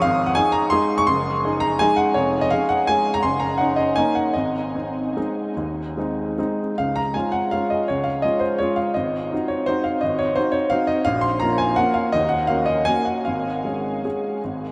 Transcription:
0.02 0.36 G#1 medium
0.02 0.27 F5 loud
0.26 0.36 F#5 medium
0.35 0.69 D#4 soft
0.35 0.69 G#4 medium
0.35 0.54 G#5 loud
0.52 0.71 A#5 medium
0.70 1.04 G#3 medium
0.70 1.04 D#4 medium
0.70 1.04 G#4 medium
0.70 0.98 C6 loud
0.98 1.07 C#6 loud
1.07 1.43 F#1 medium
1.07 1.62 C6 loud
1.45 1.77 D#4 medium
1.45 1.78 G#4 medium
1.60 1.80 A#5 loud
1.79 2.13 G#3 medium
1.79 2.13 D#4 medium
1.79 2.13 G#4 medium
1.79 1.98 G#5 loud
1.96 2.15 F#5 medium
2.14 2.50 F1 medium
2.14 2.42 C#5 medium
2.41 2.51 D#5 medium
2.50 2.85 C#4 soft
2.50 2.85 G#4 medium
2.50 2.69 F5 medium
2.69 2.88 F#5 medium
2.87 3.20 G#3 medium
2.87 3.20 C#4 soft
2.87 3.21 G#4 medium
2.87 3.14 G#5 loud
3.14 3.23 A#5 medium
3.23 3.59 F#1 medium
3.23 3.40 C6 medium
3.40 3.58 A#5 medium
3.58 3.93 C#4 soft
3.58 3.93 D#4 soft
3.58 3.77 F#5 medium
3.76 3.96 D#5 medium
3.96 4.32 A#3 soft
3.96 4.32 C#4 soft
3.96 4.32 D#4 soft
3.96 4.15 G#5 medium
4.15 4.35 F#5 medium
4.33 4.74 G#1 medium
4.33 6.58 D#5 medium
4.75 5.13 C4 soft
4.75 5.13 D#4 soft
5.17 5.53 G#3 soft
5.17 5.53 C4 soft
5.17 5.53 D#4 soft
5.57 5.96 D#2 soft
5.97 6.34 G#3 soft
5.97 6.35 C4 soft
5.97 6.35 D#4 soft
6.38 6.74 G#3 soft
6.38 6.74 C4 soft
6.38 6.75 D#4 medium
6.78 7.14 C#2 soft
6.78 6.96 F5 medium
6.96 7.14 A#5 medium
7.14 7.49 G#3 soft
7.14 7.50 C#4 soft
7.14 7.50 F4 soft
7.14 7.33 G#5 medium
7.32 7.52 F#5 medium
7.51 7.85 G#3 soft
7.51 7.86 C#4 soft
7.51 7.86 F4 soft
7.51 7.70 F5 medium
7.70 7.88 D#5 medium
7.88 8.23 C#2 soft
7.88 8.06 C#5 medium
8.04 8.23 F5 medium
8.22 8.57 G#3 soft
8.22 8.57 C#4 soft
8.22 8.57 F4 soft
8.22 8.41 D#5 medium
8.40 8.59 C5 medium
8.59 8.92 G#3 soft
8.59 8.93 C#4 soft
8.59 8.93 F4 soft
8.59 8.77 C#5 medium
8.76 8.95 F5 medium
8.94 9.31 G#1 medium
8.94 9.49 D#5 medium
9.32 9.65 C4 soft
9.32 9.65 D#4 soft
9.32 9.65 F#4 soft
9.48 9.67 C#5 medium
9.66 10.00 C4 soft
9.66 10.00 D#4 soft
9.66 10.00 F#4 soft
9.66 9.85 C5 medium
9.84 10.02 F5 medium
10.01 10.36 G#1 medium
10.01 10.19 D#5 medium
10.19 10.36 C#5 medium
10.36 10.68 C4 soft
10.36 10.68 D#4 soft
10.36 10.68 F#4 soft
10.36 10.53 C5 medium
10.52 10.70 C#5 medium
10.70 11.03 C4 soft
10.70 11.03 D#4 soft
10.70 11.03 F#4 soft
10.70 10.88 F5 medium
10.87 11.05 D#5 medium
11.05 11.40 A#1 medium
11.05 11.23 F5 loud
11.21 11.40 C6 medium
11.40 11.74 A#3 soft
11.40 11.74 C#4 soft
11.40 11.75 F4 medium
11.40 11.58 A#5 medium
11.58 11.77 G#5 medium
11.76 12.10 A#3 medium
11.76 12.10 C#4 soft
11.76 12.10 F4 medium
11.76 11.95 F#5 loud
11.94 12.12 F5 medium
12.12 12.48 D#2 medium
12.12 12.30 D#5 loud
12.29 12.48 F#5 medium
12.47 12.83 A#3 soft
12.47 12.84 C#4 soft
12.47 12.84 F#4 soft
12.47 12.67 F5 medium
12.66 12.86 D#5 medium
12.85 13.22 A#3 soft
12.85 13.22 C#4 soft
12.85 13.22 F#4 soft
12.85 13.06 G#5 loud
13.05 13.25 F#5 medium
13.25 13.64 G#1 soft
13.25 14.72 F5 medium
13.65 14.01 G#3 soft
13.65 14.01 C#4 soft
13.65 14.01 G#4 soft
14.05 14.40 G#3 soft
14.05 14.40 C#4 soft
14.05 14.40 G#4 soft
14.44 14.72 G#1 soft

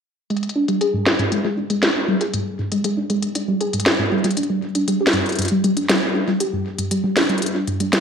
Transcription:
0.30 0.38 G#3 loud
0.30 closed hi-hat soft
0.37 closed hi-hat soft
0.43 closed hi-hat soft
0.49 closed hi-hat soft
0.56 0.68 D4 medium
0.68 0.76 G3 loud
0.68 closed hi-hat medium
0.81 0.89 G#4 loud
0.81 closed hi-hat medium
0.94 1.02 G#2 medium
1.06 snare loud
1.06 closed hi-hat soft
1.19 1.27 G#2 medium
1.19 closed hi-hat medium
1.32 1.43 G#3 loud
1.32 closed hi-hat medium
1.45 1.53 G#3 loud
1.57 1.62 D4 medium
1.70 1.78 G#3 loud
1.70 closed hi-hat medium
1.83 snare loud
1.83 closed hi-hat medium
1.95 2.07 D4 medium
2.08 2.16 G3 loud
2.21 2.29 G#4 loud
2.21 closed hi-hat medium
2.34 2.42 G#2 medium
2.34 closed hi-hat medium
2.59 2.67 G#2 medium
2.72 2.83 G#3 medium
2.72 closed hi-hat medium
2.84 2.92 G#3 loud
2.84 closed hi-hat medium
2.97 3.02 D4 medium
3.10 3.18 G#3 loud
3.10 closed hi-hat soft
3.23 closed hi-hat medium
3.35 3.47 D4 medium
3.35 closed hi-hat medium
3.48 3.56 G3 loud
3.61 3.69 G#4 loud
3.61 closed hi-hat soft
3.73 3.81 G#2 medium
3.73 closed hi-hat soft
3.80 closed hi-hat medium
3.86 snare loud
3.99 4.07 G#2 medium
4.11 4.23 G3 loud
4.24 4.32 G3 loud
4.24 closed hi-hat soft
4.31 closed hi-hat soft
4.37 4.42 D4 medium
4.37 closed hi-hat medium
4.43 closed hi-hat soft
4.50 4.58 G3 loud
4.75 4.87 D4 medium
4.75 closed hi-hat medium
4.88 4.96 G3 loud
4.88 closed hi-hat medium
5.01 5.08 G4 medium
5.07 snare loud
5.13 5.21 G2 medium
5.13 closed hi-hat soft
5.26 closed hi-hat soft
5.29 closed hi-hat soft
5.32 closed hi-hat soft
5.35 5.47 G2 medium
5.35 closed hi-hat soft
5.39 closed hi-hat medium
5.42 closed hi-hat soft
5.45 closed hi-hat soft
5.48 5.63 G3 loud
5.48 closed hi-hat soft
5.64 5.72 G3 loud
5.64 closed hi-hat soft
5.77 5.82 D4 medium
5.77 closed hi-hat soft
5.89 5.97 G3 loud
5.89 snare loud
5.89 closed hi-hat medium
6.15 6.27 D4 medium
6.28 6.36 G3 loud
6.40 6.48 G4 loud
6.40 closed hi-hat medium
6.53 6.61 G2 medium
6.78 6.86 G2 medium
6.78 closed hi-hat soft
6.91 7.03 G3 loud
6.91 closed hi-hat medium
7.04 7.12 G3 loud
7.17 7.21 D4 medium
7.17 snare loud
7.17 closed hi-hat soft
7.29 7.37 G3 loud
7.29 closed hi-hat soft
7.38 closed hi-hat soft
7.42 closed hi-hat medium
7.46 closed hi-hat soft
7.55 7.67 D4 medium
7.67 7.79 G2 medium
7.67 closed hi-hat soft
7.80 7.88 G3 medium
7.80 closed hi-hat soft
7.93 7.98 G3 medium
7.93 snare loud
7.93 closed hi-hat medium

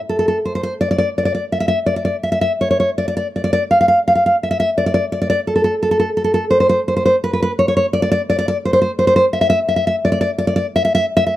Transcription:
0.09 0.18 A4 medium
0.19 0.27 A4 medium
0.28 0.37 A4 medium
0.45 0.54 C5 medium
0.55 0.62 C5 medium
0.63 0.73 C5 medium
0.81 0.90 D5 medium
0.91 0.97 D5 medium
0.98 1.08 D5 medium
1.18 1.24 D5 medium
1.25 1.33 D5 medium
1.35 1.44 D5 medium
1.52 1.59 E5 medium
1.60 1.67 E5 medium
1.68 1.78 E5 medium
1.86 1.95 D5 medium
1.96 2.04 D5 medium
2.05 2.15 D5 medium
2.23 2.31 E5 medium
2.32 2.40 E5 medium
2.41 2.51 E5 medium
2.61 2.69 C#5 medium
2.71 2.79 C#5 medium
2.80 2.89 C#5 medium
2.98 3.07 D5 medium
3.08 3.15 D5 medium
3.17 3.26 D5 medium
3.36 3.43 D5 medium
3.44 3.52 D5 medium
3.53 3.62 D5 medium
3.71 3.79 F5 medium
3.81 3.87 F5 medium
3.88 3.98 F5 medium
4.08 4.14 F5 medium
4.15 4.25 F5 medium
4.26 4.35 F5 medium
4.43 4.50 E5 medium
4.51 4.59 E5 medium
4.60 4.69 E5 medium
4.78 4.85 D5 medium
4.86 4.93 D5 medium
4.94 5.04 D5 medium
5.12 5.20 D5 medium
5.22 5.29 D5 medium
5.30 5.39 D5 medium
5.47 5.54 A4 medium
5.56 5.63 A4 medium
5.64 5.74 A4 medium
5.83 5.90 A4 medium
5.91 5.98 A4 medium
6.00 6.09 A4 medium
6.17 6.23 A4 medium
6.24 6.33 A4 medium
6.34 6.44 A4 medium
6.51 6.59 C5 medium
6.60 6.68 C5 medium
6.69 6.79 C5 medium
6.88 6.95 C5 medium
6.97 7.04 C5 medium
7.06 7.15 C5 medium
7.24 7.32 B4 medium
7.33 7.41 B4 medium
7.42 7.51 B4 medium
7.59 7.67 C#5 medium
7.68 7.75 C#5 medium
7.77 7.85 C#5 medium
7.93 8.01 D5 medium
8.02 8.10 D5 medium
8.12 8.20 D5 loud
8.30 8.37 D5 medium
8.39 8.47 D5 medium
8.48 8.56 D5 loud
8.65 8.72 C5 medium
8.73 8.80 C5 medium
8.82 8.90 C5 medium
8.99 9.06 C5 medium
9.07 9.15 C5 medium
9.16 9.24 C5 medium
9.33 9.40 E5 medium
9.41 9.48 E5 medium
9.50 9.59 E5 loud
9.69 9.75 E5 medium
9.76 9.85 E5 medium
9.87 9.95 E5 medium
10.05 10.11 D5 medium
10.12 10.20 D5 medium
10.21 10.29 D5 loud
10.38 10.46 D5 medium
10.47 10.55 D5 medium
10.56 10.65 D5 loud
10.76 10.84 E5 medium
10.85 10.93 E5 medium
10.95 11.05 E5 loud
11.17 11.25 E5 loud
11.27 11.35 E5 medium

